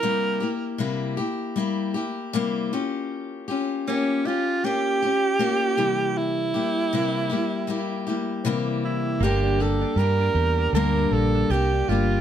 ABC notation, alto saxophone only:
X:1
M:4/4
L:1/8
Q:"Swing 16ths" 1/4=78
K:Cmix
V:1 name="Alto saxophone"
B2 z6 | z2 _D F G4 | E6 z E | G A B2 B A G F |]